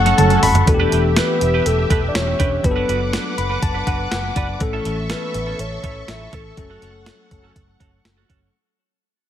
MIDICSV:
0, 0, Header, 1, 9, 480
1, 0, Start_track
1, 0, Tempo, 491803
1, 658, Time_signature, 4, 2, 24, 8
1, 9069, End_track
2, 0, Start_track
2, 0, Title_t, "String machine"
2, 0, Program_c, 0, 50
2, 0, Note_on_c, 0, 69, 86
2, 0, Note_on_c, 0, 78, 75
2, 0, Note_on_c, 0, 85, 91
2, 621, Note_off_c, 0, 85, 0
2, 639, Note_off_c, 0, 69, 0
2, 640, Note_off_c, 0, 78, 0
2, 652, Note_on_c, 0, 76, 73
2, 653, Note_on_c, 0, 67, 80
2, 2556, Note_off_c, 0, 67, 0
2, 2556, Note_off_c, 0, 76, 0
2, 2582, Note_on_c, 0, 78, 74
2, 2584, Note_on_c, 0, 71, 77
2, 2586, Note_on_c, 0, 86, 81
2, 4481, Note_off_c, 0, 78, 0
2, 4482, Note_off_c, 0, 71, 0
2, 4483, Note_off_c, 0, 86, 0
2, 4497, Note_on_c, 0, 76, 68
2, 4499, Note_on_c, 0, 69, 76
2, 4499, Note_on_c, 0, 85, 84
2, 6398, Note_off_c, 0, 76, 0
2, 6415, Note_on_c, 0, 78, 71
2, 8300, Note_off_c, 0, 69, 0
2, 8300, Note_off_c, 0, 85, 0
2, 8317, Note_off_c, 0, 78, 0
2, 9069, End_track
3, 0, Start_track
3, 0, Title_t, "Soft synth lead"
3, 0, Program_c, 1, 80
3, 0, Note_on_c, 1, 57, 100
3, 421, Note_off_c, 1, 57, 0
3, 664, Note_on_c, 1, 69, 86
3, 1147, Note_on_c, 1, 71, 92
3, 1162, Note_off_c, 1, 69, 0
3, 1626, Note_on_c, 1, 69, 90
3, 1640, Note_off_c, 1, 71, 0
3, 1862, Note_off_c, 1, 69, 0
3, 1866, Note_on_c, 1, 69, 88
3, 1942, Note_off_c, 1, 69, 0
3, 2034, Note_on_c, 1, 74, 80
3, 2103, Note_on_c, 1, 73, 107
3, 2117, Note_off_c, 1, 74, 0
3, 2585, Note_on_c, 1, 71, 89
3, 2600, Note_off_c, 1, 73, 0
3, 3302, Note_off_c, 1, 71, 0
3, 4506, Note_on_c, 1, 69, 89
3, 4985, Note_on_c, 1, 71, 95
3, 4999, Note_off_c, 1, 69, 0
3, 5466, Note_on_c, 1, 73, 98
3, 5481, Note_off_c, 1, 71, 0
3, 5948, Note_on_c, 1, 76, 101
3, 5963, Note_off_c, 1, 73, 0
3, 6190, Note_on_c, 1, 69, 99
3, 6204, Note_off_c, 1, 76, 0
3, 7864, Note_off_c, 1, 69, 0
3, 9069, End_track
4, 0, Start_track
4, 0, Title_t, "Clean electric guitar"
4, 0, Program_c, 2, 27
4, 55, Note_on_c, 2, 69, 62
4, 62, Note_on_c, 2, 66, 62
4, 66, Note_on_c, 2, 61, 52
4, 165, Note_off_c, 2, 61, 0
4, 171, Note_off_c, 2, 66, 0
4, 175, Note_off_c, 2, 69, 0
4, 777, Note_on_c, 2, 71, 77
4, 782, Note_on_c, 2, 67, 72
4, 786, Note_on_c, 2, 62, 64
4, 889, Note_off_c, 2, 62, 0
4, 895, Note_off_c, 2, 67, 0
4, 900, Note_on_c, 2, 62, 60
4, 901, Note_off_c, 2, 71, 0
4, 907, Note_on_c, 2, 67, 63
4, 912, Note_on_c, 2, 71, 68
4, 1009, Note_off_c, 2, 71, 0
4, 1019, Note_off_c, 2, 67, 0
4, 1064, Note_off_c, 2, 62, 0
4, 1136, Note_on_c, 2, 62, 86
4, 1142, Note_on_c, 2, 67, 88
4, 1148, Note_on_c, 2, 71, 96
4, 1251, Note_off_c, 2, 71, 0
4, 1257, Note_off_c, 2, 67, 0
4, 1329, Note_off_c, 2, 62, 0
4, 1503, Note_on_c, 2, 71, 62
4, 1508, Note_on_c, 2, 67, 60
4, 1514, Note_on_c, 2, 62, 47
4, 1665, Note_off_c, 2, 71, 0
4, 1668, Note_off_c, 2, 67, 0
4, 1671, Note_off_c, 2, 62, 0
4, 1859, Note_on_c, 2, 62, 74
4, 1865, Note_on_c, 2, 67, 79
4, 1871, Note_on_c, 2, 71, 85
4, 1966, Note_off_c, 2, 71, 0
4, 1975, Note_off_c, 2, 67, 0
4, 2050, Note_off_c, 2, 62, 0
4, 2337, Note_on_c, 2, 62, 84
4, 2342, Note_on_c, 2, 67, 76
4, 2347, Note_on_c, 2, 71, 88
4, 2444, Note_off_c, 2, 71, 0
4, 2453, Note_off_c, 2, 67, 0
4, 2529, Note_off_c, 2, 62, 0
4, 2690, Note_on_c, 2, 71, 71
4, 2698, Note_on_c, 2, 66, 66
4, 2704, Note_on_c, 2, 62, 57
4, 2799, Note_off_c, 2, 62, 0
4, 2806, Note_off_c, 2, 66, 0
4, 2811, Note_on_c, 2, 62, 64
4, 2812, Note_off_c, 2, 71, 0
4, 2818, Note_on_c, 2, 66, 72
4, 2823, Note_on_c, 2, 71, 71
4, 2923, Note_off_c, 2, 71, 0
4, 2932, Note_off_c, 2, 66, 0
4, 2979, Note_off_c, 2, 62, 0
4, 3053, Note_on_c, 2, 62, 83
4, 3060, Note_on_c, 2, 66, 73
4, 3065, Note_on_c, 2, 71, 92
4, 3164, Note_off_c, 2, 71, 0
4, 3173, Note_off_c, 2, 66, 0
4, 3247, Note_off_c, 2, 62, 0
4, 3411, Note_on_c, 2, 71, 63
4, 3417, Note_on_c, 2, 66, 53
4, 3423, Note_on_c, 2, 62, 51
4, 3522, Note_off_c, 2, 62, 0
4, 3528, Note_off_c, 2, 66, 0
4, 3530, Note_off_c, 2, 71, 0
4, 3654, Note_on_c, 2, 71, 60
4, 3660, Note_on_c, 2, 66, 52
4, 3667, Note_on_c, 2, 62, 45
4, 3763, Note_off_c, 2, 62, 0
4, 3770, Note_off_c, 2, 66, 0
4, 3775, Note_off_c, 2, 71, 0
4, 3775, Note_on_c, 2, 62, 66
4, 3782, Note_on_c, 2, 66, 73
4, 3787, Note_on_c, 2, 71, 75
4, 3887, Note_off_c, 2, 71, 0
4, 3895, Note_off_c, 2, 66, 0
4, 3968, Note_off_c, 2, 62, 0
4, 4256, Note_on_c, 2, 62, 73
4, 4263, Note_on_c, 2, 66, 75
4, 4268, Note_on_c, 2, 71, 90
4, 4367, Note_off_c, 2, 71, 0
4, 4375, Note_off_c, 2, 66, 0
4, 4449, Note_off_c, 2, 62, 0
4, 4617, Note_on_c, 2, 69, 71
4, 4623, Note_on_c, 2, 64, 64
4, 4628, Note_on_c, 2, 61, 60
4, 4725, Note_off_c, 2, 61, 0
4, 4732, Note_off_c, 2, 64, 0
4, 4736, Note_off_c, 2, 69, 0
4, 4736, Note_on_c, 2, 61, 57
4, 4744, Note_on_c, 2, 64, 59
4, 4748, Note_on_c, 2, 69, 62
4, 4846, Note_off_c, 2, 69, 0
4, 4855, Note_off_c, 2, 64, 0
4, 4902, Note_off_c, 2, 61, 0
4, 4974, Note_on_c, 2, 61, 76
4, 4981, Note_on_c, 2, 64, 85
4, 4986, Note_on_c, 2, 69, 91
4, 5085, Note_off_c, 2, 69, 0
4, 5094, Note_off_c, 2, 64, 0
4, 5168, Note_off_c, 2, 61, 0
4, 5335, Note_on_c, 2, 69, 53
4, 5343, Note_on_c, 2, 64, 49
4, 5348, Note_on_c, 2, 61, 45
4, 5502, Note_off_c, 2, 69, 0
4, 5505, Note_off_c, 2, 64, 0
4, 5508, Note_off_c, 2, 61, 0
4, 5696, Note_on_c, 2, 61, 72
4, 5703, Note_on_c, 2, 64, 78
4, 5707, Note_on_c, 2, 69, 77
4, 5804, Note_off_c, 2, 69, 0
4, 5813, Note_off_c, 2, 64, 0
4, 5889, Note_off_c, 2, 61, 0
4, 6177, Note_on_c, 2, 61, 75
4, 6184, Note_on_c, 2, 64, 73
4, 6189, Note_on_c, 2, 69, 89
4, 6284, Note_off_c, 2, 69, 0
4, 6294, Note_off_c, 2, 64, 0
4, 6369, Note_off_c, 2, 61, 0
4, 6537, Note_on_c, 2, 69, 76
4, 6544, Note_on_c, 2, 66, 70
4, 6549, Note_on_c, 2, 61, 62
4, 6644, Note_off_c, 2, 61, 0
4, 6651, Note_off_c, 2, 66, 0
4, 6655, Note_off_c, 2, 69, 0
4, 6656, Note_on_c, 2, 61, 57
4, 6663, Note_on_c, 2, 66, 63
4, 6667, Note_on_c, 2, 69, 66
4, 6764, Note_off_c, 2, 69, 0
4, 6771, Note_off_c, 2, 66, 0
4, 6822, Note_off_c, 2, 61, 0
4, 6893, Note_on_c, 2, 61, 73
4, 6899, Note_on_c, 2, 66, 78
4, 6903, Note_on_c, 2, 69, 79
4, 7002, Note_off_c, 2, 69, 0
4, 7012, Note_off_c, 2, 66, 0
4, 7087, Note_off_c, 2, 61, 0
4, 7251, Note_on_c, 2, 69, 53
4, 7259, Note_on_c, 2, 66, 47
4, 7263, Note_on_c, 2, 61, 39
4, 7420, Note_off_c, 2, 69, 0
4, 7423, Note_off_c, 2, 66, 0
4, 7425, Note_off_c, 2, 61, 0
4, 7612, Note_on_c, 2, 61, 66
4, 7618, Note_on_c, 2, 66, 71
4, 7625, Note_on_c, 2, 69, 70
4, 7721, Note_off_c, 2, 69, 0
4, 7729, Note_off_c, 2, 66, 0
4, 7807, Note_off_c, 2, 61, 0
4, 7973, Note_on_c, 2, 69, 57
4, 7980, Note_on_c, 2, 66, 53
4, 7985, Note_on_c, 2, 61, 46
4, 8081, Note_off_c, 2, 61, 0
4, 8088, Note_off_c, 2, 66, 0
4, 8092, Note_on_c, 2, 61, 75
4, 8093, Note_off_c, 2, 69, 0
4, 8100, Note_on_c, 2, 66, 69
4, 8104, Note_on_c, 2, 69, 75
4, 8205, Note_off_c, 2, 69, 0
4, 8214, Note_off_c, 2, 66, 0
4, 8287, Note_off_c, 2, 61, 0
4, 9069, End_track
5, 0, Start_track
5, 0, Title_t, "Tine electric piano"
5, 0, Program_c, 3, 4
5, 0, Control_c, 3, 64, 127
5, 0, Note_on_c, 3, 57, 64
5, 0, Note_on_c, 3, 61, 61
5, 0, Note_on_c, 3, 66, 70
5, 0, Note_on_c, 3, 78, 77
5, 160, Note_off_c, 3, 78, 0
5, 175, Note_on_c, 3, 81, 77
5, 399, Note_off_c, 3, 81, 0
5, 417, Note_on_c, 3, 83, 73
5, 613, Note_off_c, 3, 57, 0
5, 619, Note_off_c, 3, 61, 0
5, 625, Note_off_c, 3, 66, 0
5, 641, Note_off_c, 3, 83, 0
5, 645, Note_on_c, 3, 52, 60
5, 653, Note_on_c, 3, 59, 53
5, 662, Note_on_c, 3, 62, 53
5, 669, Note_on_c, 3, 66, 49
5, 672, Control_c, 3, 64, 0
5, 721, Note_off_c, 3, 66, 0
5, 725, Note_on_c, 3, 67, 64
5, 830, Control_c, 3, 64, 127
5, 2533, Note_off_c, 3, 52, 0
5, 2537, Note_off_c, 3, 59, 0
5, 2542, Note_off_c, 3, 62, 0
5, 2567, Note_on_c, 3, 54, 59
5, 2573, Note_on_c, 3, 59, 55
5, 2574, Note_off_c, 3, 67, 0
5, 2580, Note_on_c, 3, 62, 52
5, 2590, Note_on_c, 3, 67, 51
5, 2591, Control_c, 3, 64, 0
5, 2641, Note_off_c, 3, 67, 0
5, 2647, Note_on_c, 3, 69, 65
5, 2778, Control_c, 3, 64, 127
5, 3298, Note_on_c, 3, 83, 65
5, 3521, Note_off_c, 3, 83, 0
5, 3538, Note_on_c, 3, 81, 72
5, 3761, Note_off_c, 3, 81, 0
5, 3776, Note_on_c, 3, 78, 66
5, 4000, Note_off_c, 3, 78, 0
5, 4014, Note_on_c, 3, 78, 65
5, 4239, Note_off_c, 3, 78, 0
5, 4255, Note_on_c, 3, 74, 67
5, 4454, Note_off_c, 3, 54, 0
5, 4457, Note_off_c, 3, 59, 0
5, 4461, Note_off_c, 3, 62, 0
5, 4480, Note_off_c, 3, 74, 0
5, 4482, Note_on_c, 3, 52, 56
5, 4489, Note_on_c, 3, 57, 54
5, 4493, Note_off_c, 3, 69, 0
5, 4497, Note_on_c, 3, 61, 51
5, 4505, Note_on_c, 3, 69, 65
5, 4513, Control_c, 3, 64, 0
5, 4701, Control_c, 3, 64, 127
5, 6372, Note_off_c, 3, 52, 0
5, 6375, Note_off_c, 3, 57, 0
5, 6379, Note_off_c, 3, 61, 0
5, 6383, Note_off_c, 3, 69, 0
5, 6407, Note_on_c, 3, 54, 53
5, 6414, Note_on_c, 3, 57, 50
5, 6422, Note_on_c, 3, 61, 51
5, 6430, Note_on_c, 3, 69, 59
5, 6431, Control_c, 3, 64, 0
5, 6620, Control_c, 3, 64, 127
5, 8294, Note_off_c, 3, 54, 0
5, 8298, Note_off_c, 3, 57, 0
5, 8302, Note_off_c, 3, 61, 0
5, 8306, Note_off_c, 3, 69, 0
5, 8349, Control_c, 3, 64, 0
5, 9069, End_track
6, 0, Start_track
6, 0, Title_t, "Analog polysynth"
6, 0, Program_c, 4, 90
6, 178, Note_on_c, 4, 54, 94
6, 178, Note_on_c, 4, 61, 95
6, 178, Note_on_c, 4, 69, 104
6, 382, Note_off_c, 4, 54, 0
6, 382, Note_off_c, 4, 61, 0
6, 382, Note_off_c, 4, 69, 0
6, 6415, Note_on_c, 4, 61, 81
6, 6416, Note_on_c, 4, 69, 89
6, 6417, Note_on_c, 4, 54, 81
6, 6518, Note_off_c, 4, 61, 0
6, 6519, Note_off_c, 4, 54, 0
6, 6519, Note_off_c, 4, 69, 0
6, 7136, Note_on_c, 4, 54, 89
6, 7137, Note_on_c, 4, 69, 101
6, 7138, Note_on_c, 4, 61, 91
6, 7341, Note_off_c, 4, 54, 0
6, 7342, Note_off_c, 4, 61, 0
6, 7342, Note_off_c, 4, 69, 0
6, 9069, End_track
7, 0, Start_track
7, 0, Title_t, "Fingered electric bass"
7, 0, Program_c, 5, 33
7, 0, Note_on_c, 5, 30, 100
7, 110, Note_off_c, 5, 30, 0
7, 182, Note_on_c, 5, 30, 102
7, 353, Note_off_c, 5, 30, 0
7, 421, Note_on_c, 5, 30, 87
7, 593, Note_off_c, 5, 30, 0
7, 660, Note_on_c, 5, 28, 97
7, 832, Note_off_c, 5, 28, 0
7, 900, Note_on_c, 5, 28, 86
7, 1159, Note_off_c, 5, 28, 0
7, 1381, Note_on_c, 5, 28, 88
7, 1552, Note_off_c, 5, 28, 0
7, 1620, Note_on_c, 5, 28, 94
7, 1792, Note_off_c, 5, 28, 0
7, 1858, Note_on_c, 5, 28, 94
7, 2031, Note_off_c, 5, 28, 0
7, 2100, Note_on_c, 5, 28, 93
7, 2272, Note_off_c, 5, 28, 0
7, 2340, Note_on_c, 5, 28, 75
7, 2512, Note_off_c, 5, 28, 0
7, 2580, Note_on_c, 5, 30, 92
7, 2752, Note_off_c, 5, 30, 0
7, 2819, Note_on_c, 5, 30, 85
7, 3078, Note_off_c, 5, 30, 0
7, 3299, Note_on_c, 5, 30, 90
7, 3471, Note_off_c, 5, 30, 0
7, 3540, Note_on_c, 5, 30, 94
7, 3712, Note_off_c, 5, 30, 0
7, 3777, Note_on_c, 5, 30, 88
7, 3950, Note_off_c, 5, 30, 0
7, 4020, Note_on_c, 5, 30, 92
7, 4192, Note_off_c, 5, 30, 0
7, 4257, Note_on_c, 5, 30, 80
7, 4430, Note_off_c, 5, 30, 0
7, 4497, Note_on_c, 5, 33, 98
7, 4670, Note_off_c, 5, 33, 0
7, 4737, Note_on_c, 5, 33, 95
7, 4997, Note_off_c, 5, 33, 0
7, 5218, Note_on_c, 5, 33, 93
7, 5391, Note_off_c, 5, 33, 0
7, 5455, Note_on_c, 5, 33, 90
7, 5629, Note_off_c, 5, 33, 0
7, 5695, Note_on_c, 5, 33, 90
7, 5869, Note_off_c, 5, 33, 0
7, 5937, Note_on_c, 5, 33, 93
7, 6110, Note_off_c, 5, 33, 0
7, 6178, Note_on_c, 5, 33, 76
7, 6351, Note_off_c, 5, 33, 0
7, 6417, Note_on_c, 5, 30, 87
7, 6590, Note_off_c, 5, 30, 0
7, 6658, Note_on_c, 5, 30, 91
7, 6917, Note_off_c, 5, 30, 0
7, 7139, Note_on_c, 5, 30, 89
7, 7312, Note_off_c, 5, 30, 0
7, 7379, Note_on_c, 5, 30, 86
7, 7551, Note_off_c, 5, 30, 0
7, 7616, Note_on_c, 5, 30, 76
7, 7789, Note_off_c, 5, 30, 0
7, 7854, Note_on_c, 5, 30, 82
7, 8028, Note_off_c, 5, 30, 0
7, 8098, Note_on_c, 5, 30, 78
7, 8271, Note_off_c, 5, 30, 0
7, 9069, End_track
8, 0, Start_track
8, 0, Title_t, "Muted clean electric guitar strokes"
8, 177, Note_on_c, 9, 29, 49
8, 274, Note_off_c, 9, 29, 0
8, 299, Note_on_c, 9, 29, 40
8, 397, Note_off_c, 9, 29, 0
8, 541, Note_on_c, 9, 29, 40
8, 639, Note_off_c, 9, 29, 0
8, 661, Note_on_c, 9, 29, 42
8, 759, Note_off_c, 9, 29, 0
8, 1021, Note_on_c, 9, 29, 48
8, 1118, Note_off_c, 9, 29, 0
8, 1263, Note_on_c, 9, 29, 47
8, 1360, Note_off_c, 9, 29, 0
8, 1381, Note_on_c, 9, 29, 47
8, 1479, Note_off_c, 9, 29, 0
8, 1741, Note_on_c, 9, 29, 42
8, 1839, Note_off_c, 9, 29, 0
8, 1977, Note_on_c, 9, 29, 44
8, 2075, Note_off_c, 9, 29, 0
8, 2219, Note_on_c, 9, 29, 48
8, 2316, Note_off_c, 9, 29, 0
8, 2456, Note_on_c, 9, 29, 36
8, 2553, Note_off_c, 9, 29, 0
8, 2574, Note_on_c, 9, 29, 40
8, 2672, Note_off_c, 9, 29, 0
8, 2935, Note_on_c, 9, 29, 49
8, 3033, Note_off_c, 9, 29, 0
8, 3176, Note_on_c, 9, 29, 47
8, 3273, Note_off_c, 9, 29, 0
8, 3294, Note_on_c, 9, 29, 43
8, 3391, Note_off_c, 9, 29, 0
8, 3534, Note_on_c, 9, 29, 35
8, 3631, Note_off_c, 9, 29, 0
8, 3899, Note_on_c, 9, 29, 41
8, 3996, Note_off_c, 9, 29, 0
8, 4138, Note_on_c, 9, 29, 38
8, 4236, Note_off_c, 9, 29, 0
8, 4379, Note_on_c, 9, 29, 43
8, 4477, Note_off_c, 9, 29, 0
8, 4497, Note_on_c, 9, 29, 36
8, 4595, Note_off_c, 9, 29, 0
8, 4858, Note_on_c, 9, 29, 41
8, 4955, Note_off_c, 9, 29, 0
8, 5097, Note_on_c, 9, 29, 35
8, 5195, Note_off_c, 9, 29, 0
8, 5218, Note_on_c, 9, 29, 31
8, 5315, Note_off_c, 9, 29, 0
8, 5575, Note_on_c, 9, 29, 47
8, 5672, Note_off_c, 9, 29, 0
8, 5816, Note_on_c, 9, 29, 51
8, 5913, Note_off_c, 9, 29, 0
8, 5936, Note_on_c, 9, 29, 40
8, 6034, Note_off_c, 9, 29, 0
8, 6057, Note_on_c, 9, 29, 45
8, 6155, Note_off_c, 9, 29, 0
8, 6295, Note_on_c, 9, 29, 34
8, 6393, Note_off_c, 9, 29, 0
8, 6417, Note_on_c, 9, 29, 40
8, 6514, Note_off_c, 9, 29, 0
8, 6776, Note_on_c, 9, 29, 34
8, 6873, Note_off_c, 9, 29, 0
8, 7014, Note_on_c, 9, 29, 41
8, 7111, Note_off_c, 9, 29, 0
8, 7132, Note_on_c, 9, 29, 34
8, 7230, Note_off_c, 9, 29, 0
8, 7493, Note_on_c, 9, 29, 39
8, 7591, Note_off_c, 9, 29, 0
8, 7733, Note_on_c, 9, 29, 38
8, 7830, Note_off_c, 9, 29, 0
8, 7853, Note_on_c, 9, 29, 35
8, 7951, Note_off_c, 9, 29, 0
8, 8217, Note_on_c, 9, 29, 31
8, 8314, Note_off_c, 9, 29, 0
8, 9069, End_track
9, 0, Start_track
9, 0, Title_t, "Drums"
9, 58, Note_on_c, 9, 42, 53
9, 59, Note_on_c, 9, 48, 74
9, 156, Note_off_c, 9, 42, 0
9, 156, Note_off_c, 9, 48, 0
9, 178, Note_on_c, 9, 42, 90
9, 178, Note_on_c, 9, 47, 98
9, 275, Note_off_c, 9, 47, 0
9, 276, Note_off_c, 9, 42, 0
9, 296, Note_on_c, 9, 42, 48
9, 394, Note_off_c, 9, 42, 0
9, 417, Note_on_c, 9, 46, 81
9, 418, Note_on_c, 9, 43, 111
9, 515, Note_off_c, 9, 43, 0
9, 515, Note_off_c, 9, 46, 0
9, 536, Note_on_c, 9, 42, 62
9, 538, Note_on_c, 9, 43, 98
9, 634, Note_off_c, 9, 42, 0
9, 636, Note_off_c, 9, 43, 0
9, 658, Note_on_c, 9, 42, 79
9, 659, Note_on_c, 9, 36, 99
9, 755, Note_off_c, 9, 42, 0
9, 757, Note_off_c, 9, 36, 0
9, 900, Note_on_c, 9, 42, 71
9, 998, Note_off_c, 9, 42, 0
9, 1137, Note_on_c, 9, 38, 95
9, 1137, Note_on_c, 9, 42, 83
9, 1234, Note_off_c, 9, 38, 0
9, 1234, Note_off_c, 9, 42, 0
9, 1379, Note_on_c, 9, 42, 74
9, 1477, Note_off_c, 9, 42, 0
9, 1620, Note_on_c, 9, 42, 82
9, 1718, Note_off_c, 9, 42, 0
9, 1858, Note_on_c, 9, 36, 79
9, 1860, Note_on_c, 9, 42, 62
9, 1956, Note_off_c, 9, 36, 0
9, 1957, Note_off_c, 9, 42, 0
9, 2099, Note_on_c, 9, 38, 96
9, 2100, Note_on_c, 9, 42, 85
9, 2197, Note_off_c, 9, 38, 0
9, 2197, Note_off_c, 9, 42, 0
9, 2339, Note_on_c, 9, 36, 81
9, 2340, Note_on_c, 9, 42, 70
9, 2437, Note_off_c, 9, 36, 0
9, 2438, Note_off_c, 9, 42, 0
9, 2579, Note_on_c, 9, 42, 73
9, 2580, Note_on_c, 9, 36, 103
9, 2677, Note_off_c, 9, 36, 0
9, 2677, Note_off_c, 9, 42, 0
9, 2822, Note_on_c, 9, 42, 67
9, 2920, Note_off_c, 9, 42, 0
9, 3059, Note_on_c, 9, 38, 96
9, 3059, Note_on_c, 9, 42, 83
9, 3156, Note_off_c, 9, 38, 0
9, 3156, Note_off_c, 9, 42, 0
9, 3300, Note_on_c, 9, 42, 71
9, 3398, Note_off_c, 9, 42, 0
9, 3538, Note_on_c, 9, 36, 87
9, 3539, Note_on_c, 9, 42, 84
9, 3635, Note_off_c, 9, 36, 0
9, 3636, Note_off_c, 9, 42, 0
9, 3776, Note_on_c, 9, 36, 79
9, 3777, Note_on_c, 9, 42, 65
9, 3874, Note_off_c, 9, 36, 0
9, 3875, Note_off_c, 9, 42, 0
9, 4017, Note_on_c, 9, 38, 94
9, 4017, Note_on_c, 9, 42, 78
9, 4114, Note_off_c, 9, 38, 0
9, 4115, Note_off_c, 9, 42, 0
9, 4255, Note_on_c, 9, 42, 70
9, 4257, Note_on_c, 9, 36, 85
9, 4352, Note_off_c, 9, 42, 0
9, 4354, Note_off_c, 9, 36, 0
9, 4494, Note_on_c, 9, 42, 70
9, 4497, Note_on_c, 9, 36, 101
9, 4591, Note_off_c, 9, 42, 0
9, 4595, Note_off_c, 9, 36, 0
9, 4737, Note_on_c, 9, 42, 67
9, 4835, Note_off_c, 9, 42, 0
9, 4974, Note_on_c, 9, 38, 93
9, 4974, Note_on_c, 9, 42, 79
9, 5072, Note_off_c, 9, 38, 0
9, 5072, Note_off_c, 9, 42, 0
9, 5216, Note_on_c, 9, 42, 72
9, 5313, Note_off_c, 9, 42, 0
9, 5459, Note_on_c, 9, 42, 80
9, 5556, Note_off_c, 9, 42, 0
9, 5696, Note_on_c, 9, 36, 80
9, 5698, Note_on_c, 9, 42, 59
9, 5794, Note_off_c, 9, 36, 0
9, 5795, Note_off_c, 9, 42, 0
9, 5937, Note_on_c, 9, 38, 88
9, 5937, Note_on_c, 9, 42, 80
9, 6034, Note_off_c, 9, 38, 0
9, 6035, Note_off_c, 9, 42, 0
9, 6176, Note_on_c, 9, 42, 68
9, 6177, Note_on_c, 9, 36, 81
9, 6274, Note_off_c, 9, 42, 0
9, 6275, Note_off_c, 9, 36, 0
9, 6416, Note_on_c, 9, 42, 68
9, 6417, Note_on_c, 9, 36, 100
9, 6513, Note_off_c, 9, 42, 0
9, 6515, Note_off_c, 9, 36, 0
9, 6658, Note_on_c, 9, 42, 64
9, 6756, Note_off_c, 9, 42, 0
9, 6894, Note_on_c, 9, 38, 92
9, 6894, Note_on_c, 9, 42, 76
9, 6992, Note_off_c, 9, 38, 0
9, 6992, Note_off_c, 9, 42, 0
9, 7136, Note_on_c, 9, 42, 68
9, 7138, Note_on_c, 9, 36, 78
9, 7234, Note_off_c, 9, 42, 0
9, 7236, Note_off_c, 9, 36, 0
9, 7377, Note_on_c, 9, 36, 77
9, 7379, Note_on_c, 9, 42, 83
9, 7474, Note_off_c, 9, 36, 0
9, 7477, Note_off_c, 9, 42, 0
9, 7616, Note_on_c, 9, 36, 76
9, 7618, Note_on_c, 9, 42, 62
9, 7714, Note_off_c, 9, 36, 0
9, 7716, Note_off_c, 9, 42, 0
9, 7858, Note_on_c, 9, 38, 87
9, 7858, Note_on_c, 9, 42, 81
9, 7956, Note_off_c, 9, 38, 0
9, 7956, Note_off_c, 9, 42, 0
9, 8097, Note_on_c, 9, 36, 77
9, 8098, Note_on_c, 9, 42, 64
9, 8195, Note_off_c, 9, 36, 0
9, 8196, Note_off_c, 9, 42, 0
9, 9069, End_track
0, 0, End_of_file